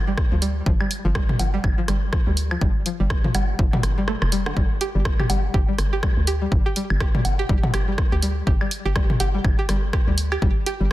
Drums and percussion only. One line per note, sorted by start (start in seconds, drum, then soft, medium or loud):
0.18 kick loud
0.18 cross-stick medium
0.42 open hi-hat medium
0.66 kick loud
0.81 high woodblock medium
0.91 open hi-hat medium
1.15 kick loud
1.15 cross-stick medium
1.29 mid tom medium
1.39 open hi-hat medium
1.39 low woodblock medium
1.64 kick loud
1.64 high woodblock medium
1.88 cross-stick medium
1.88 open hi-hat medium
2.13 kick loud
2.13 cross-stick medium
2.37 open hi-hat medium
2.51 high woodblock medium
2.61 kick loud
2.86 open hi-hat medium
3.10 kick loud
3.10 cross-stick medium
3.24 mid tom medium
3.35 open hi-hat medium
3.35 high woodblock medium
3.35 low woodblock medium
3.59 kick loud
3.73 mid tom medium
3.73 low woodblock medium
3.83 cross-stick medium
3.83 open hi-hat medium
4.08 cross-stick medium
4.22 cross-stick medium
4.22 high woodblock medium
4.32 open hi-hat medium
4.46 cross-stick medium
4.46 low woodblock soft
4.57 kick loud
4.81 open hi-hat medium
5.05 kick loud
5.05 cross-stick medium
5.20 mid tom medium
5.20 high woodblock medium
5.30 open hi-hat medium
5.30 low woodblock medium
5.54 kick loud
5.79 cross-stick medium
5.79 open hi-hat medium
6.03 kick loud
6.03 cross-stick medium
6.03 high woodblock medium
6.27 open hi-hat medium
6.52 kick loud
6.76 open hi-hat loud
6.90 high woodblock medium
7.00 kick loud
7.00 cross-stick medium
7.15 mid tom medium
7.25 open hi-hat loud
7.25 low woodblock medium
7.49 kick loud
7.63 mid tom loud
7.63 low woodblock medium
7.74 cross-stick medium
7.74 open hi-hat loud
7.74 high woodblock medium
7.98 kick loud
7.98 cross-stick medium
8.22 open hi-hat medium
8.47 kick loud
8.61 high woodblock medium
8.71 open hi-hat loud
8.96 kick loud
8.96 cross-stick medium
9.10 mid tom medium
9.20 open hi-hat loud
9.20 low woodblock medium
9.44 kick loud
9.44 high woodblock medium
9.69 cross-stick medium
9.69 open hi-hat loud
9.93 kick loud
9.93 cross-stick medium
10.18 open hi-hat medium
10.32 high woodblock medium
10.42 kick loud
10.66 open hi-hat medium